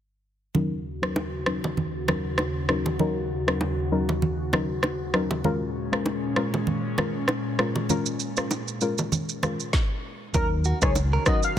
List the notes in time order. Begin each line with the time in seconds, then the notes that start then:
0.54 D#2 C#3 F#3 C#4 D#4 F#4 A#4, low conga
1.02 F#3 C#4 D#4 A#4, cross-stick
1.16 high bongo
1.46 F#3 C#4 D#4 A#4, cross-stick
1.64 low bongo
1.77 low conga
2.07 F#3 C#4 D#4 A#4, cross-stick, low bongo, low conga
2.38 cross-stick, high bongo
2.69 F#3 C#4 D#4 A#4, cross-stick
2.86 low bongo
2.99 F#3 C#4 D#4 A#4, low conga
3.47 F#3 C#4 D#4 A#4, cross-stick
3.61 high bongo
3.91 F#3 C#4 D#4 A#4
4.09 low bongo
4.22 low conga
4.53 F#3 C#4 D#4 A#4, cross-stick, low bongo, low conga
4.83 cross-stick, high bongo
5.14 F#3 C#4 D#4 A#4, cross-stick
5.31 low bongo
5.44 A#2 G#3 C#4 F4 A#4, low conga
5.92 G#3 C#4 F4 A#4, cross-stick
6.06 high bongo
6.36 G#3 C#4 F4 A#4, cross-stick
6.54 low bongo
6.67 low conga
6.98 G#3 C#4 F4 A#4, cross-stick, low bongo, low conga
7.28 cross-stick, high bongo
7.59 G#3 C#4 F4 A#4, cross-stick
7.76 low bongo
7.89 G#3 C#4 F4 A#4, low conga, shaker
8.06 shaker
8.20 shaker
8.37 G#3 C#4 F4 A#4, cross-stick, shaker
8.51 high bongo, shaker
8.68 shaker
8.81 G#3 C#4 F4 A#4, shaker
8.98 low bongo, shaker
9.12 low conga, shaker
9.29 shaker
9.43 G#3 C#4 F4 A#4, cross-stick, low bongo, low conga, shaker
9.60 shaker
9.73 kick, snare
10.34 D#2 D#3 F#3 C#4 D#4 F#4 A#4, kick, low conga, shaker
10.64 F#4, shaker
10.82 C#2 F#3 C#4 D#4 G#4 A#4 C#5, kick, cross-stick, shaker
10.96 high bongo, shaker
11.13 A#4
11.26 F#3 C#4 D#4 F#4 A#4 D#5, kick, cross-stick, shaker
11.43 F5, shaker